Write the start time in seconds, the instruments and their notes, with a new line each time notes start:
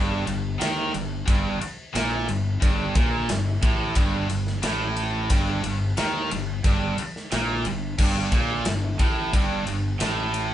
Already playing: fingered electric bass G1, distorted electric guitar G2
0.27 fingered electric bass G1, distorted electric guitar G2, ride
0.58 fingered electric bass D#2, distorted electric guitar D#3, snare, ride
0.93 fingered electric bass G1, distorted electric guitar G2, ride
1.26 fingered electric bass G1, distorted electric guitar G2, kick, ride
1.59 muted distorted electric guitar stroke, muted overdriven electric guitar stroke, muted fingered electric bass stroke, ride
1.93 fingered electric bass A#1, distorted electric guitar A#2, snare, ride
2.27 fingered electric bass G1, distorted electric guitar G2, ride
2.60 fingered electric bass G1, distorted electric guitar G2, kick, ride
2.95 fingered electric bass A#1, distorted electric guitar A#2, kick, ride
3.29 fingered electric bass G1, distorted electric guitar G2, snare, ride
3.62 fingered electric bass A1, distorted electric guitar A2, kick, ride
3.95 fingered electric bass G1, distorted electric guitar G2, kick, ride
4.29 fingered electric bass G1, distorted electric guitar G2, ride
4.47 snare
4.63 fingered electric bass A1, distorted electric guitar A2, snare, ride
4.97 ride
5.30 fingered electric bass G1, distorted electric guitar G2, kick, ride
5.64 fingered electric bass G1, distorted electric guitar G2, ride
5.97 fingered electric bass D#2, distorted electric guitar D#3, snare, ride
6.31 fingered electric bass G1, distorted electric guitar G2, ride
6.64 fingered electric bass G1, distorted electric guitar G2, kick, ride
6.98 muted fingered electric bass stroke, muted overdriven electric guitar stroke, muted distorted electric guitar stroke, ride
7.16 snare
7.32 fingered electric bass A#1, distorted electric guitar A#2, snare, ride
7.65 fingered electric bass G1, distorted electric guitar G2, ride
7.98 fingered electric bass G1, distorted electric guitar G2, kick, crash
8.32 fingered electric bass A#1, distorted electric guitar A#2, kick, ride
8.65 fingered electric bass G1, distorted electric guitar G2, snare, ride
8.99 fingered electric bass A1, distorted electric guitar A2, kick, ride
9.33 fingered electric bass G1, distorted electric guitar G2, kick, ride
9.67 fingered electric bass G1, distorted electric guitar G2, ride
10.00 fingered electric bass A1, distorted electric guitar A2, snare, ride
10.34 ride